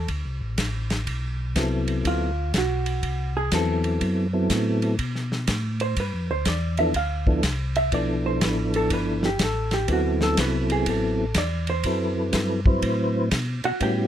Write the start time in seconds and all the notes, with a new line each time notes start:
0.08 D2, kick, ride
0.25 C2
0.41 A1
0.58 A1, kick, snare, hi-hat pedal, ride
0.90 snare, ride
1.07 B1, kick, ride
1.56 C2 F#3 B3 C4 E4 A4, kick, snare, hi-hat pedal, ride
1.88 ride
2.05 D2 F4, kick, ride
2.54 B1, kick, snare, hi-hat pedal, ride
2.58 F#4
2.86 ride
3.03 C2, kick, ride
3.37 G#4
3.52 E2 F#3 B3 C4 E4 A4, kick, snare, hi-hat pedal, ride
3.84 ride
4.01 F#2, kick, ride
4.33 F#3 B3 C4 E4 A4
4.50 A2, kick, snare, hi-hat pedal, ride
4.82 ride
4.99 B2, kick, ride
5.15 snare
5.32 snare
5.47 A2, kick, snare, hi-hat pedal, ride
5.80 C5, ride
5.96 G2 B4, kick, ride
6.14 F2
6.30 D2 C5
6.45 E2 D5, kick, snare, hi-hat pedal, ride
6.77 F3 B3 D4 E4 A4 E5, ride
6.94 D2 F5, kick, ride
7.27 F3 B3 D4 E4 A4, kick
7.43 C2, kick, snare, hi-hat pedal, ride
7.75 E5, ride
7.92 B1 F3 B3 D4 E4 A4 D5, kick, ride
8.26 C5
8.41 A1 B4, kick, snare, hi-hat pedal, ride
8.74 A4, ride
8.90 G1 B4, kick, ride
9.23 G4, snare
9.39 A1 A4, kick, snare, hi-hat pedal, ride
9.71 G4, snare, ride
9.88 D2 F#3 B3 C4 E4 A4, kick, ride
9.93 F#4
10.21 A4, snare
10.37 C2 B4, kick, snare, hi-hat pedal, ride
10.70 G#4, ride
10.86 A1 A4, kick, ride
11.34 E2 D5, kick, snare, hi-hat pedal, ride
11.67 C5, ride
11.83 F#2 F#3 C4 E4 A4 B4, kick, ride
12.33 G2, kick, snare, hi-hat pedal, ride
12.66 F#3 C4 E4 B4 C5, kick
12.82 A2, kick, ride
13.31 B2, kick, snare, hi-hat pedal, ride
13.64 B2 F#4 F#5, ride
13.80 A2 G3 B3 C#4 E4 F#4 G4 G5, kick, ride